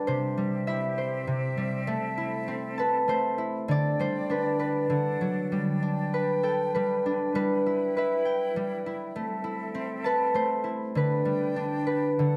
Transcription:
Already playing: G3 D4 A4 B4 G5
0.07 C3 C4 G4 C5 E5
0.37 G3
0.67 E4 E5
0.98 C5
1.27 C3
1.57 G3
1.87 A3 A4
2.18 E4
2.48 C4
2.78 B4 A5
3.08 A3 C5
3.38 E4
3.68 D3 D4 D5 G5
3.99 G3 C5
4.30 D4 B4
4.59 B4
4.89 D3 A4 F#5
5.21 F#3
5.50 G3 B4 G5
5.83 D4
6.14 B4
6.43 A4 G5
6.75 G3 B4
7.06 D4
7.35 G3 E4 B4 G5
7.66 E4
7.97 B4 E5
8.25 G5
8.56 G3
8.86 E4
9.16 A3 C4 A4 E5
9.44 E4
9.74 C4
10.04 B4 A5
10.34 A3 C5
10.64 E4
10.95 D3 D4 B4 G5
11.25 G3
11.56 D4
11.87 B4
12.18 D3 A4 F#5

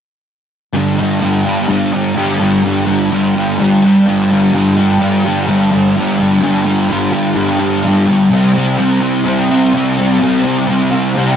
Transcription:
0.73 G2 D3 G3
0.98 D3 G3
1.20 G2 D3 G3
1.44 D3 G3
1.68 G2 D3 G3
1.93 D3 G3
2.15 G2 D3 G3
2.39 D3 G3
2.63 G2 D3 G3
2.87 D3 G3
3.11 G2 D3 G3
3.35 D3 G3
3.57 G2 D3 G3
3.82 D3 G3
4.06 G2 D3 G3
4.30 D3 G3
4.53 G2 D3 G3
4.77 D3 G3
4.99 G2 D3 G3
5.25 D3 G3
5.47 G2 D3 G3
5.71 D3 G3
5.96 G2 D3 G3
6.19 D3 G3
6.41 G2 D3 G3
6.65 G3
6.69 D3
6.89 G2 D3 G3
7.12 D3 G3
7.35 G2 D3 G3
7.59 D3 G3
7.84 G2 D3 G3
8.07 D3 G3
8.30 C3 G3 C4
8.54 G3 C4
8.78 C3 G3 C4
9.00 G3 C4
9.24 C3 G3 C4
9.48 G3 C4
9.73 C3 G3 C4
9.98 G3 C4
10.19 C3 G3 C4
10.44 G3 C4
10.67 C3 G3 C4
10.91 G3 C4
11.15 C3 G3 C4

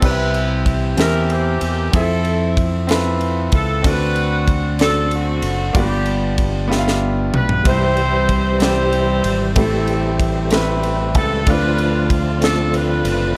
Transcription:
0.00 C2 C3 C4 E4 G4 B4 D5, kick, crash
0.05 E4 G4 B4
0.11 E5
0.34 ride
0.66 kick, ride
0.96 E2 E3 C4 E4 G4 A#4 E5, snare, ride
1.00 G4 A#4
1.30 A#3 C4 G4, ride
1.61 E2, ride
1.92 F2 F3 C4 E4 A4 E5, kick, ride
2.25 ride
2.57 kick, ride
2.87 C4 E4 F4 A4, snare, ride
2.91 B4
3.21 ride
3.52 C#2 A4, kick, ride
3.82 D2 D3 C4 D4 F#4 A4, kick, ride
3.86 F#4 B4 D5
4.16 ride
4.48 kick, ride
4.78 C4 D4 F#4 A4 D5, snare, ride
5.11 A3 C4, ride
5.15 F#4
5.42 F#1, ride
5.73 G1 G2 A#3 B3 D4 F4 G4 D5, kick, ride
5.78 B3 G4
6.06 ride
6.38 kick, ride
6.68 B3 D4 F4 G4 E5
6.72 snare
6.78 F5
6.88 snare
7.34 B1 B4, mid tom
7.49 floor tom
7.63 C2 C3 E3 G3 C4 E4 G4 C5, kick, ride
7.68 E4 G4 C5
7.97 ride
8.29 kick, ride
8.59 G3 C4 E4 G4 D5, snare, ride
8.63 G4 C5
8.93 ride
9.24 G#1, ride
9.55 A1 A2 E3 G3 A3 B3 C4 E4 G4 C5, kick, ride
9.59 C4 E4 A4
9.88 ride
10.20 kick, ride
10.50 A3 C4 E4 G4 B4, snare, ride
10.83 ride
11.15 C#2 A4, kick, ride
11.45 D2 D3 F3 A3 C4 D4 F4 B4, kick, ride
11.50 D5
11.78 ride
12.10 kick, ride
12.41 A3 C4 D4 F4 A4 D5, snare, ride
12.74 F4 B4, ride
13.05 F#1, ride

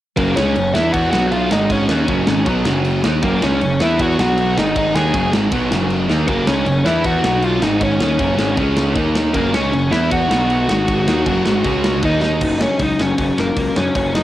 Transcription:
0.17 F#1 F#2 C#3 F#3 A#3 A#4, kick, crash
0.36 C#2 C#3 G#3 C#4 C#5, snare
0.55 F#1 F#2 C#3, crash
0.74 E2 E3 B3 E4 E5, snare
0.93 F#4 F#5, kick, crash
1.11 B1 B2 F#3 B3 F#4 F#5, snare
1.32 F4 F5, crash
1.51 G#1 G#2 D#3 G#3 D#4 D#5, snare
1.70 C#4 C#5, kick, crash
1.89 D#2 D#3 A#3 D#4, snare
2.08 F#1 F#2 C#3 F#3, kick, crash
2.27 G#1 G#2 D#3 G#3, snare
2.46 B1 B2 F#3 B3, kick, crash
2.65 F#1 F#2 C#3 F#3, snare
2.85 crash
3.04 D#2 D#3 A#3 D#4, snare
3.22 F#1 F#2 C#3 F#3 A#3 A#4, kick, crash
3.42 C#2 C#3 G#3 C#4 C#5, snare
3.61 F#1 F#2 C#3, crash
3.80 E2 E3 B3 E4 E5, snare
3.99 F#4 F#5, kick, crash
4.18 B1 B2 F#3 B3 F#4 F#5, snare
4.38 crash
4.57 G#1 G#2 D#3 G#3 D#4 D#5, snare
4.76 D#4 D#5, kick, crash
4.95 D#2 D#3 A#3 D#4 G#4 G#5, snare
5.14 F#1 F#2 C#3 F#3, kick, crash
5.33 G#1 G#2 D#3 G#3, snare
5.52 B1 B2 F#3 B3, kick, crash
5.71 F#1 F#2 C#3 F#3, snare
5.90 crash
6.09 D#2 D#3 A#3 D#4, snare
6.28 F#1 F#2 C#3 F#3 A#3 A#4, kick, crash
6.47 C#2 C#3 G#3 C#4 C#5, snare
6.66 F#1 F#2 C#3, crash
6.85 E2 E3 B3 E4 E5, snare
7.04 F#4 F#5, kick, crash
7.23 B1 B2 F#3 B3 F#4 F#5, snare
7.42 F4 F5, crash
7.62 G#1 G#2 D#3 G#3 D#4 D#5, snare
7.81 C#4 C#5, kick, crash
8.00 D#2 D#3 A#3 D#4, snare
8.19 F#1 F#2 C#3 F#3, kick, crash
8.37 G#1 G#2 D#3 G#3, snare
8.56 C#2 C#3 G#3 C#4, kick, crash
8.77 snare
8.94 D#2 D#3 A#3 D#4, kick, crash
9.15 snare
9.33 F#1 F#2 C#3 F#3 A#3 A#4, kick, crash
9.53 C#2 C#3 G#3 C#4 C#5, snare
9.72 F#1 F#2 C#3, crash
9.91 E2 E3 B3 E4 E5, snare
10.11 F#4 F#5, kick, crash
10.31 B1 B2 F#3 B3, snare
10.50 crash
10.69 G#1 G#2 D#3 G#3, snare
10.88 kick, crash
11.07 D#2 D#3 A#3 D#4, snare
11.26 F#1 F#2 C#3 F#3, kick, crash
11.45 G#1 G#2 D#3 G#3, snare
11.64 C#2 C#3 G#3 C#4, kick, crash
11.84 snare
12.03 D#2 D#3 A#3 D#4 D#5, kick, crash
12.21 D#4 D#5, snare
12.41 F#1 F#2 C#3 F#3, kick, crash
12.60 F#2 C#3 F#3 C#4 C#5, snare
12.79 C#2 F#2 C#3 F#3 D#4 D#5, kick, open hi-hat
12.98 F#1 F#2 C#3 F#3 C#4, snare
13.02 C#5
13.18 F#1 F#2 C#3 F#3, kick, open hi-hat
13.37 F#1 F#2 C#3 F#3 A#3 A#4, snare
13.56 C#2 F#2 C#3 F#3, kick, open hi-hat
13.76 F#2 C#3 F#3 C#4 C#5, snare
13.95 F#1 F#2 C#3 F#3 C#4 C#5, kick, open hi-hat
14.15 F#2 C#3 F#3 D#4 D#5, snare

